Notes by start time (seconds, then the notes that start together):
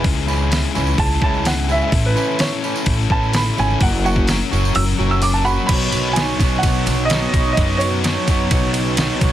Already playing: G#2 E3 E4
0.03 C#2 C#3 G#3 C#4 E4 G#4, kick, open hi-hat, tambourine
0.27 E3 G#3 C#4 E4 G#4, tambourine
0.51 G#3 C#4 E4 G#4, snare, open hi-hat, tambourine
0.63 tambourine
0.75 C#2 E3 G#3 C#4 E4 G#4, tambourine
0.87 tambourine
0.98 C#2 G#3 C#4 E4 G#4 A5, kick, open hi-hat
1.11 tambourine
1.21 C#2 E3 G#3 C#4 E4 G#4 A5, kick
1.34 tambourine
1.45 G#3 C#4 E4 G#4 F#5, snare, open hi-hat, tambourine
1.68 E3 G#3 C#4 E4 G#4 E5, tambourine
1.81 E5, tambourine
1.92 A1 C#3 C#4 E4 A4, kick, open hi-hat, tambourine
2.06 B4
2.15 E3 A3 C#4 E4 A4, tambourine
2.39 C#4 E4 A4 C#5, snare, open hi-hat, tambourine
2.53 tambourine
2.63 E3 A3 C#4 E4 A4, tambourine
2.76 tambourine
2.86 A1 C#4 E4 A4, kick, open hi-hat
3.00 tambourine
3.10 A1 E3 A3 C#4 E4 A4 A5, kick
3.23 tambourine
3.33 C#4 E4 A4 B5, snare, open hi-hat, tambourine
3.46 tambourine
3.58 G#1 E3 A3 C#4 E4 A4 G#5, tambourine
3.70 tambourine
3.80 F#1 A#2 F#3 C#4 F#4 A#4 F#5, kick, open hi-hat, tambourine
3.95 tambourine
4.04 F#3 A#3 C#4 F#4 A#4 F#5, tambourine
4.16 kick
4.27 F#3 C#4 F#4 A#4, snare, open hi-hat, tambourine
4.42 tambourine
4.51 F#1 F#3 A#3 C#4 F#4 A#4, tambourine
4.65 tambourine
4.75 F#1 F#3 C#4 F#4 A#4 E6, open hi-hat
4.89 tambourine
4.98 F#1 F#3 A#3 C#4 F#4 A#4, tambourine
5.11 E6, tambourine
5.22 F#3 C#4 F#4 A#4 D6, open hi-hat, tambourine
5.34 A5, tambourine
5.45 F#3 A#3 C#4 F#4 A#4 F#5 B5, tambourine
5.66 B1 C#3 F#3 B3 D#4 F#4 B5, kick, crash, ride
5.71 C#5
5.82 tambourine
5.92 B1, ride, tambourine
6.06 tambourine
6.13 F#3 B3 D#4 G#5, ride, tambourine
6.17 F#4 C#5, snare
6.39 B1 F#3 B3 D#4 F#4 C#5, kick, ride, tambourine
6.59 F#3 F#5
6.63 B2 B3 D#4 F#4 C#5, kick, ride, tambourine
6.75 tambourine
6.86 B1, ride, tambourine
6.98 tambourine
7.05 D#5
7.10 F#3 B3 D#4 F#4 C#5, snare, ride, tambourine
7.22 tambourine
7.33 B1 F#3 B3 D#4 F#4 C#5, kick, ride, tambourine
7.45 tambourine
7.53 D#5
7.57 F#2 F#3 B3 D#4 F#4 C#5, kick, ride
7.68 tambourine
7.78 C#5, ride, tambourine
7.92 tambourine
8.04 F#3 B3 D#4 F#4 C#5, snare, ride, tambourine
8.27 F#2 F#3 B3 D#4 F#4 C#5, kick, ride, tambourine
8.51 B1 F#3 B3 D#4 F#4 C#5, kick, ride, tambourine
8.63 tambourine
8.74 ride, tambourine
8.86 tambourine
8.97 F#3 B3 D#4 F#4 C#5, snare, ride, tambourine
9.11 tambourine
9.21 B1 F#3 B3 D#4 F#4 C#5, kick, ride, tambourine